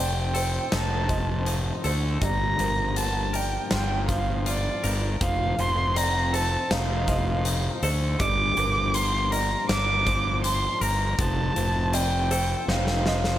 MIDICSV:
0, 0, Header, 1, 6, 480
1, 0, Start_track
1, 0, Tempo, 748130
1, 1426, Time_signature, 4, 2, 24, 8
1, 8588, End_track
2, 0, Start_track
2, 0, Title_t, "Violin"
2, 0, Program_c, 0, 40
2, 0, Note_on_c, 0, 79, 76
2, 469, Note_off_c, 0, 79, 0
2, 477, Note_on_c, 0, 81, 72
2, 925, Note_off_c, 0, 81, 0
2, 1430, Note_on_c, 0, 82, 86
2, 1905, Note_on_c, 0, 81, 81
2, 1914, Note_off_c, 0, 82, 0
2, 2153, Note_on_c, 0, 79, 81
2, 2163, Note_off_c, 0, 81, 0
2, 2387, Note_off_c, 0, 79, 0
2, 2391, Note_on_c, 0, 79, 82
2, 2612, Note_off_c, 0, 79, 0
2, 2629, Note_on_c, 0, 77, 77
2, 2850, Note_off_c, 0, 77, 0
2, 2879, Note_on_c, 0, 74, 79
2, 3207, Note_off_c, 0, 74, 0
2, 3355, Note_on_c, 0, 77, 89
2, 3596, Note_on_c, 0, 84, 91
2, 3606, Note_off_c, 0, 77, 0
2, 3829, Note_on_c, 0, 82, 95
2, 3839, Note_off_c, 0, 84, 0
2, 4074, Note_on_c, 0, 81, 92
2, 4084, Note_off_c, 0, 82, 0
2, 4306, Note_on_c, 0, 77, 85
2, 4316, Note_off_c, 0, 81, 0
2, 5025, Note_off_c, 0, 77, 0
2, 5262, Note_on_c, 0, 86, 99
2, 5738, Note_on_c, 0, 84, 95
2, 5748, Note_off_c, 0, 86, 0
2, 5977, Note_on_c, 0, 82, 90
2, 5987, Note_off_c, 0, 84, 0
2, 6220, Note_off_c, 0, 82, 0
2, 6222, Note_on_c, 0, 86, 105
2, 6677, Note_off_c, 0, 86, 0
2, 6702, Note_on_c, 0, 84, 96
2, 6947, Note_on_c, 0, 82, 87
2, 6956, Note_off_c, 0, 84, 0
2, 7187, Note_on_c, 0, 81, 86
2, 7197, Note_off_c, 0, 82, 0
2, 7669, Note_on_c, 0, 79, 90
2, 7678, Note_off_c, 0, 81, 0
2, 8141, Note_off_c, 0, 79, 0
2, 8145, Note_on_c, 0, 77, 75
2, 8588, Note_off_c, 0, 77, 0
2, 8588, End_track
3, 0, Start_track
3, 0, Title_t, "Felt piano"
3, 0, Program_c, 1, 0
3, 0, Note_on_c, 1, 74, 75
3, 226, Note_off_c, 1, 74, 0
3, 229, Note_on_c, 1, 72, 69
3, 705, Note_on_c, 1, 75, 64
3, 707, Note_off_c, 1, 72, 0
3, 1185, Note_off_c, 1, 75, 0
3, 1189, Note_on_c, 1, 72, 60
3, 1427, Note_off_c, 1, 72, 0
3, 1427, Note_on_c, 1, 74, 75
3, 1666, Note_off_c, 1, 74, 0
3, 1669, Note_on_c, 1, 70, 67
3, 2147, Note_off_c, 1, 70, 0
3, 2149, Note_on_c, 1, 74, 64
3, 2627, Note_off_c, 1, 74, 0
3, 3826, Note_on_c, 1, 74, 74
3, 4065, Note_off_c, 1, 74, 0
3, 4066, Note_on_c, 1, 72, 67
3, 4545, Note_off_c, 1, 72, 0
3, 4545, Note_on_c, 1, 75, 72
3, 5024, Note_off_c, 1, 75, 0
3, 5025, Note_on_c, 1, 72, 66
3, 5265, Note_off_c, 1, 72, 0
3, 5269, Note_on_c, 1, 74, 76
3, 5501, Note_on_c, 1, 70, 67
3, 5506, Note_off_c, 1, 74, 0
3, 5982, Note_off_c, 1, 70, 0
3, 5984, Note_on_c, 1, 74, 75
3, 6463, Note_off_c, 1, 74, 0
3, 7659, Note_on_c, 1, 74, 82
3, 7897, Note_on_c, 1, 72, 74
3, 7900, Note_off_c, 1, 74, 0
3, 8378, Note_off_c, 1, 72, 0
3, 8379, Note_on_c, 1, 75, 71
3, 8588, Note_off_c, 1, 75, 0
3, 8588, End_track
4, 0, Start_track
4, 0, Title_t, "Clean electric guitar"
4, 0, Program_c, 2, 27
4, 0, Note_on_c, 2, 53, 60
4, 0, Note_on_c, 2, 60, 58
4, 0, Note_on_c, 2, 65, 56
4, 218, Note_on_c, 2, 69, 64
4, 457, Note_off_c, 2, 65, 0
4, 460, Note_on_c, 2, 63, 61
4, 695, Note_off_c, 2, 53, 0
4, 697, Note_on_c, 2, 53, 65
4, 932, Note_off_c, 2, 63, 0
4, 940, Note_on_c, 2, 63, 54
4, 1173, Note_off_c, 2, 69, 0
4, 1180, Note_on_c, 2, 69, 62
4, 1184, Note_off_c, 2, 60, 0
4, 1419, Note_on_c, 2, 43, 67
4, 1423, Note_off_c, 2, 63, 0
4, 1423, Note_off_c, 2, 69, 0
4, 1438, Note_off_c, 2, 53, 0
4, 1657, Note_on_c, 2, 53, 60
4, 1898, Note_on_c, 2, 58, 59
4, 2138, Note_on_c, 2, 70, 63
4, 2383, Note_on_c, 2, 65, 67
4, 2619, Note_off_c, 2, 53, 0
4, 2622, Note_off_c, 2, 43, 0
4, 2622, Note_on_c, 2, 53, 64
4, 2860, Note_off_c, 2, 65, 0
4, 2862, Note_on_c, 2, 65, 56
4, 3094, Note_off_c, 2, 70, 0
4, 3101, Note_off_c, 2, 58, 0
4, 3102, Note_on_c, 2, 70, 68
4, 3343, Note_off_c, 2, 53, 0
4, 3343, Note_off_c, 2, 70, 0
4, 3345, Note_on_c, 2, 53, 66
4, 3581, Note_off_c, 2, 53, 0
4, 3584, Note_on_c, 2, 53, 60
4, 3821, Note_on_c, 2, 60, 66
4, 4061, Note_on_c, 2, 69, 66
4, 4301, Note_off_c, 2, 65, 0
4, 4304, Note_on_c, 2, 63, 70
4, 4542, Note_off_c, 2, 53, 0
4, 4545, Note_on_c, 2, 53, 72
4, 4774, Note_off_c, 2, 63, 0
4, 4781, Note_on_c, 2, 63, 59
4, 5015, Note_off_c, 2, 69, 0
4, 5022, Note_off_c, 2, 60, 0
4, 5023, Note_on_c, 2, 69, 74
4, 5262, Note_off_c, 2, 63, 0
4, 5263, Note_off_c, 2, 69, 0
4, 5264, Note_on_c, 2, 43, 68
4, 5283, Note_off_c, 2, 53, 0
4, 5501, Note_on_c, 2, 53, 61
4, 5744, Note_on_c, 2, 58, 64
4, 5982, Note_on_c, 2, 70, 66
4, 6218, Note_on_c, 2, 62, 69
4, 6455, Note_off_c, 2, 53, 0
4, 6458, Note_on_c, 2, 53, 72
4, 6463, Note_off_c, 2, 43, 0
4, 6688, Note_off_c, 2, 62, 0
4, 6696, Note_on_c, 2, 62, 65
4, 6930, Note_off_c, 2, 70, 0
4, 6937, Note_on_c, 2, 70, 75
4, 6942, Note_off_c, 2, 58, 0
4, 7173, Note_off_c, 2, 53, 0
4, 7175, Note_on_c, 2, 53, 66
4, 7179, Note_off_c, 2, 62, 0
4, 7180, Note_off_c, 2, 70, 0
4, 7408, Note_off_c, 2, 53, 0
4, 7416, Note_on_c, 2, 53, 67
4, 7657, Note_on_c, 2, 60, 66
4, 7899, Note_on_c, 2, 69, 74
4, 8143, Note_on_c, 2, 63, 71
4, 8377, Note_off_c, 2, 53, 0
4, 8384, Note_on_c, 2, 53, 74
4, 8588, Note_off_c, 2, 53, 0
4, 8588, Note_off_c, 2, 60, 0
4, 8588, Note_off_c, 2, 63, 0
4, 8588, Note_off_c, 2, 69, 0
4, 8588, End_track
5, 0, Start_track
5, 0, Title_t, "Fingered electric bass"
5, 0, Program_c, 3, 33
5, 0, Note_on_c, 3, 29, 74
5, 368, Note_off_c, 3, 29, 0
5, 465, Note_on_c, 3, 29, 77
5, 1088, Note_off_c, 3, 29, 0
5, 1183, Note_on_c, 3, 38, 80
5, 1391, Note_off_c, 3, 38, 0
5, 1421, Note_on_c, 3, 31, 86
5, 1630, Note_off_c, 3, 31, 0
5, 1663, Note_on_c, 3, 31, 75
5, 2286, Note_off_c, 3, 31, 0
5, 2387, Note_on_c, 3, 31, 83
5, 3009, Note_off_c, 3, 31, 0
5, 3105, Note_on_c, 3, 31, 92
5, 3312, Note_off_c, 3, 31, 0
5, 3341, Note_on_c, 3, 29, 83
5, 3550, Note_off_c, 3, 29, 0
5, 3583, Note_on_c, 3, 29, 74
5, 4206, Note_off_c, 3, 29, 0
5, 4303, Note_on_c, 3, 29, 88
5, 4926, Note_off_c, 3, 29, 0
5, 5020, Note_on_c, 3, 38, 91
5, 5229, Note_off_c, 3, 38, 0
5, 5260, Note_on_c, 3, 31, 92
5, 5469, Note_off_c, 3, 31, 0
5, 5496, Note_on_c, 3, 31, 81
5, 6121, Note_off_c, 3, 31, 0
5, 6217, Note_on_c, 3, 31, 85
5, 6842, Note_off_c, 3, 31, 0
5, 6936, Note_on_c, 3, 31, 94
5, 7146, Note_off_c, 3, 31, 0
5, 7176, Note_on_c, 3, 29, 95
5, 7386, Note_off_c, 3, 29, 0
5, 7419, Note_on_c, 3, 29, 77
5, 8042, Note_off_c, 3, 29, 0
5, 8135, Note_on_c, 3, 29, 93
5, 8588, Note_off_c, 3, 29, 0
5, 8588, End_track
6, 0, Start_track
6, 0, Title_t, "Drums"
6, 222, Note_on_c, 9, 42, 60
6, 286, Note_off_c, 9, 42, 0
6, 462, Note_on_c, 9, 38, 94
6, 462, Note_on_c, 9, 42, 75
6, 526, Note_off_c, 9, 38, 0
6, 526, Note_off_c, 9, 42, 0
6, 700, Note_on_c, 9, 42, 58
6, 702, Note_on_c, 9, 36, 69
6, 764, Note_off_c, 9, 42, 0
6, 766, Note_off_c, 9, 36, 0
6, 939, Note_on_c, 9, 42, 78
6, 1003, Note_off_c, 9, 42, 0
6, 1181, Note_on_c, 9, 42, 61
6, 1245, Note_off_c, 9, 42, 0
6, 1421, Note_on_c, 9, 42, 80
6, 1422, Note_on_c, 9, 36, 95
6, 1485, Note_off_c, 9, 42, 0
6, 1486, Note_off_c, 9, 36, 0
6, 1661, Note_on_c, 9, 42, 60
6, 1726, Note_off_c, 9, 42, 0
6, 1902, Note_on_c, 9, 42, 83
6, 1966, Note_off_c, 9, 42, 0
6, 2141, Note_on_c, 9, 42, 55
6, 2205, Note_off_c, 9, 42, 0
6, 2379, Note_on_c, 9, 38, 96
6, 2379, Note_on_c, 9, 42, 72
6, 2443, Note_off_c, 9, 38, 0
6, 2443, Note_off_c, 9, 42, 0
6, 2622, Note_on_c, 9, 42, 56
6, 2623, Note_on_c, 9, 36, 69
6, 2686, Note_off_c, 9, 42, 0
6, 2687, Note_off_c, 9, 36, 0
6, 2862, Note_on_c, 9, 42, 81
6, 2926, Note_off_c, 9, 42, 0
6, 3103, Note_on_c, 9, 42, 60
6, 3167, Note_off_c, 9, 42, 0
6, 3343, Note_on_c, 9, 36, 101
6, 3343, Note_on_c, 9, 42, 82
6, 3407, Note_off_c, 9, 36, 0
6, 3407, Note_off_c, 9, 42, 0
6, 3584, Note_on_c, 9, 42, 64
6, 3648, Note_off_c, 9, 42, 0
6, 3826, Note_on_c, 9, 42, 88
6, 3890, Note_off_c, 9, 42, 0
6, 4066, Note_on_c, 9, 42, 63
6, 4130, Note_off_c, 9, 42, 0
6, 4304, Note_on_c, 9, 38, 97
6, 4304, Note_on_c, 9, 42, 81
6, 4368, Note_off_c, 9, 38, 0
6, 4368, Note_off_c, 9, 42, 0
6, 4540, Note_on_c, 9, 42, 61
6, 4542, Note_on_c, 9, 36, 71
6, 4605, Note_off_c, 9, 42, 0
6, 4606, Note_off_c, 9, 36, 0
6, 4780, Note_on_c, 9, 42, 89
6, 4845, Note_off_c, 9, 42, 0
6, 5022, Note_on_c, 9, 42, 63
6, 5086, Note_off_c, 9, 42, 0
6, 5259, Note_on_c, 9, 42, 88
6, 5261, Note_on_c, 9, 36, 103
6, 5323, Note_off_c, 9, 42, 0
6, 5325, Note_off_c, 9, 36, 0
6, 5498, Note_on_c, 9, 42, 62
6, 5562, Note_off_c, 9, 42, 0
6, 5737, Note_on_c, 9, 42, 87
6, 5801, Note_off_c, 9, 42, 0
6, 5981, Note_on_c, 9, 42, 60
6, 6045, Note_off_c, 9, 42, 0
6, 6219, Note_on_c, 9, 38, 94
6, 6219, Note_on_c, 9, 42, 79
6, 6283, Note_off_c, 9, 38, 0
6, 6283, Note_off_c, 9, 42, 0
6, 6458, Note_on_c, 9, 42, 63
6, 6459, Note_on_c, 9, 36, 69
6, 6522, Note_off_c, 9, 42, 0
6, 6523, Note_off_c, 9, 36, 0
6, 6698, Note_on_c, 9, 42, 85
6, 6763, Note_off_c, 9, 42, 0
6, 6939, Note_on_c, 9, 42, 62
6, 7003, Note_off_c, 9, 42, 0
6, 7177, Note_on_c, 9, 42, 84
6, 7178, Note_on_c, 9, 36, 105
6, 7241, Note_off_c, 9, 42, 0
6, 7242, Note_off_c, 9, 36, 0
6, 7418, Note_on_c, 9, 42, 65
6, 7482, Note_off_c, 9, 42, 0
6, 7657, Note_on_c, 9, 42, 92
6, 7721, Note_off_c, 9, 42, 0
6, 7898, Note_on_c, 9, 42, 59
6, 7962, Note_off_c, 9, 42, 0
6, 8138, Note_on_c, 9, 38, 55
6, 8203, Note_off_c, 9, 38, 0
6, 8258, Note_on_c, 9, 38, 49
6, 8322, Note_off_c, 9, 38, 0
6, 8377, Note_on_c, 9, 38, 70
6, 8442, Note_off_c, 9, 38, 0
6, 8496, Note_on_c, 9, 38, 57
6, 8560, Note_off_c, 9, 38, 0
6, 8588, End_track
0, 0, End_of_file